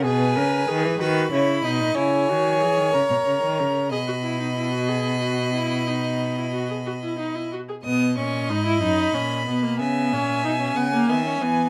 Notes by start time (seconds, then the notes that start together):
0.05 B2 G#4 B4 G#5
0.36 C#3 A#4
0.68 D#3 G#4
0.84 E3
1.00 D#3 F#4 B4 B5
1.32 C#3 E4 C#5
1.64 B2 D#4 D#5
1.81 A#2
1.95 C#3 E4 C#5 G#5
2.29 D#3 F#4
2.60 E3 G#4
2.77 D#3
2.93 C#3 A#4 A#5
3.10 B2
3.26 C#3
3.43 D#3
3.59 C#3
3.92 B2 G#4 D#5 B5
4.08 F#4
4.24 E4
4.40 D#4
4.57 E4
4.72 F#4
4.88 G#4
5.21 F#4
5.54 E4
5.87 D#4
6.38 E4
6.53 F#4
6.70 G#4
6.86 F#4
7.04 E4
7.19 D#4
7.35 E4
7.53 F#4
7.69 G#4
7.84 B2 B3 D#5 D#6
8.17 A#2 C#4 C#6
8.50 G#2 D#4 B5
8.66 E4
8.82 F#2 D#4
9.14 A#2 C#4
9.46 B2 B3
9.62 A#3
9.79 C#3 B3 E5 G#5
10.13 A#2 C#4
10.44 B2 D#4
10.60 C#4
10.76 C#3 B3 F#5
10.93 A#3
11.09 D#3 B3 E5
11.25 C#4
11.41 E3 B3 G#5